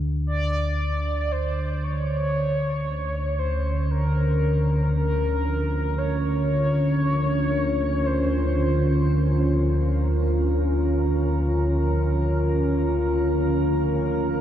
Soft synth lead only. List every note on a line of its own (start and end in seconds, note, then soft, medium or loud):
0.27 1.33 D5 loud
1.32 1.85 C5 loud
1.84 3.40 C#5 loud
3.39 3.90 C5 medium
3.91 4.90 A#4 medium
4.94 6.00 A#4 loud
5.98 8.08 C#5 loud
8.06 9.60 C5 medium